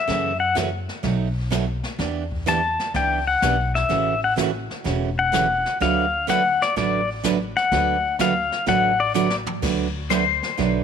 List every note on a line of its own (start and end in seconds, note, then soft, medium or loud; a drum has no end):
0.00 0.38 E5 loud
0.07 0.85 F#2 medium
0.07 0.31 C#3 medium
0.07 0.31 E3 medium
0.07 0.32 A3 medium
0.07 0.32 C#4 medium
0.07 0.32 F#4 medium
0.07 brush sweep soft
0.07 kick soft
0.07 snare soft
0.40 0.55 F#5 medium
0.55 0.68 C#3 medium
0.55 0.68 E3 medium
0.55 0.69 A3 medium
0.55 0.69 C#4 medium
0.55 0.69 F#4 medium
0.55 kick soft
0.55 snare medium
0.55 hi-hat pedal medium
0.89 snare soft
1.03 1.80 B1 medium
1.03 1.27 B2 medium
1.03 1.27 F#3 medium
1.03 1.27 A3 medium
1.03 1.27 D#4 medium
1.03 1.28 F#4 medium
1.03 brush sweep medium
1.03 kick soft
1.03 snare soft
1.51 1.64 B2 medium
1.51 1.64 F#3 medium
1.51 1.64 A3 medium
1.51 1.64 D#4 medium
1.51 1.64 F#4 medium
1.51 kick soft
1.51 snare medium
1.51 hi-hat pedal medium
1.83 snare soft
1.99 2.75 E2 medium
1.99 2.22 E3 medium
1.99 2.23 B3 medium
1.99 2.23 D4 medium
1.99 2.23 G4 medium
1.99 brush sweep soft
1.99 kick soft
1.99 snare soft
2.32 kick soft
2.46 2.59 E3 medium
2.46 2.59 B3 medium
2.46 2.60 D4 medium
2.46 2.60 G4 medium
2.46 2.92 A5 loud
2.46 kick soft
2.46 snare medium
2.46 hi-hat pedal medium
2.79 snare soft
2.94 3.35 C#2 medium
2.94 3.18 E3 medium
2.94 3.18 B3 medium
2.94 3.19 D4 medium
2.94 3.19 G4 medium
2.94 3.27 G5 medium
2.94 brush sweep soft
2.94 kick soft
2.94 snare soft
3.27 3.72 F#5 medium
3.42 3.83 B1 medium
3.42 3.55 E3 medium
3.42 3.55 B3 medium
3.42 3.55 D4 medium
3.42 3.55 G4 medium
3.42 kick soft
3.42 snare medium
3.42 hi-hat pedal medium
3.75 4.20 E5 loud
3.75 snare soft
3.89 4.67 A1 medium
3.89 4.13 C#3 medium
3.89 4.13 E3 medium
3.89 4.13 A3 medium
3.89 4.14 C#4 medium
3.89 4.14 F#4 medium
3.89 brush sweep soft
3.89 kick soft
3.89 snare soft
4.24 4.33 F#5 loud
4.36 4.50 C#3 medium
4.36 4.50 E3 medium
4.36 4.50 A3 medium
4.36 4.50 C#4 medium
4.36 4.50 F#4 medium
4.36 kick soft
4.36 snare medium
4.36 hi-hat pedal medium
4.71 snare soft
4.84 5.62 E1 medium
4.84 5.08 C#3 medium
4.84 5.09 E3 medium
4.84 5.09 A3 medium
4.84 5.09 C#4 medium
4.84 5.09 F#4 medium
4.84 brush sweep soft
4.84 kick soft
4.84 snare soft
5.19 5.77 F#5 loud
5.32 5.45 C#3 medium
5.32 5.46 E3 medium
5.32 5.46 A3 medium
5.32 5.46 C#4 medium
5.32 5.46 F#4 medium
5.32 kick soft
5.32 snare medium
5.32 hi-hat pedal medium
5.66 snare soft
5.80 6.57 D2 loud
5.80 6.04 D3 medium
5.80 6.04 F#3 medium
5.80 6.04 A3 medium
5.80 6.05 D4 medium
5.80 6.05 F#4 medium
5.80 6.05 B4 medium
5.80 6.26 F5 medium
5.80 brush sweep medium
5.80 kick soft
5.80 snare soft
6.27 6.40 D3 medium
6.27 6.41 F#3 medium
6.27 6.41 A3 medium
6.27 6.41 D4 medium
6.27 6.41 F#4 medium
6.27 6.41 B4 medium
6.27 6.61 F#5 medium
6.27 kick soft
6.27 snare medium
6.27 hi-hat pedal medium
6.62 6.77 D5 medium
6.62 snare soft
6.76 7.53 A1 medium
6.76 7.00 D3 medium
6.76 7.00 F#3 medium
6.76 7.00 A3 medium
6.76 7.00 D4 medium
6.76 7.00 F#4 medium
6.76 7.01 B4 medium
6.76 7.09 D5 medium
6.76 brush sweep medium
6.76 kick soft
6.76 snare soft
7.24 7.36 D3 medium
7.24 7.36 F#3 medium
7.24 7.37 A3 medium
7.24 7.37 D4 medium
7.24 7.37 F#4 medium
7.24 7.37 B4 medium
7.24 kick soft
7.24 snare medium
7.24 hi-hat pedal medium
7.57 8.16 F#5 loud
7.57 snare soft
7.72 8.48 D2 loud
7.72 7.95 D3 medium
7.72 7.95 F#3 medium
7.72 7.95 A3 medium
7.72 7.96 D4 medium
7.72 7.96 F#4 medium
7.72 7.96 B4 medium
7.72 brush sweep soft
7.72 kick soft
7.72 snare soft
8.19 8.32 D3 medium
8.19 8.32 F#3 medium
8.19 8.32 A3 medium
8.19 8.32 D4 medium
8.19 8.32 F#4 medium
8.19 8.33 B4 medium
8.19 8.65 F5 medium
8.19 kick soft
8.19 snare medium
8.19 hi-hat pedal medium
8.52 snare soft
8.66 9.44 A1 medium
8.66 8.90 D3 medium
8.66 8.90 F#3 medium
8.66 8.91 A3 medium
8.66 8.91 D4 medium
8.66 8.91 F#4 medium
8.66 8.91 B4 medium
8.66 9.00 F#5 loud
8.66 brush sweep medium
8.66 kick soft
8.66 snare soft
9.00 9.14 D5 loud
9.14 9.27 D3 medium
9.14 9.27 F#3 medium
9.14 9.27 A3 medium
9.14 9.28 D4 medium
9.14 9.28 F#4 medium
9.14 9.28 B4 medium
9.14 9.35 D5 loud
9.14 hi-hat pedal medium
9.30 snare medium
9.47 floor tom medium
9.62 10.39 D2 medium
9.62 9.86 D3 medium
9.62 9.86 F#3 medium
9.62 9.86 A3 medium
9.62 9.86 D4 medium
9.62 9.86 F#4 medium
9.62 9.86 B4 medium
9.62 brush sweep soft
9.62 kick medium
9.62 snare soft
9.62 crash medium
10.10 10.23 D3 medium
10.10 10.23 F#3 medium
10.10 10.23 A3 medium
10.10 10.23 D4 medium
10.10 10.23 F#4 medium
10.10 10.23 B4 medium
10.10 10.84 C5 loud
10.10 kick soft
10.10 snare medium
10.10 hi-hat pedal medium
10.43 snare soft
10.57 10.84 B1 medium
10.57 10.81 D3 medium
10.57 10.82 F#3 medium
10.57 10.82 A3 medium
10.57 10.82 D4 medium
10.57 10.82 F#4 medium
10.57 10.82 B4 medium
10.57 brush sweep soft
10.57 kick soft
10.57 snare soft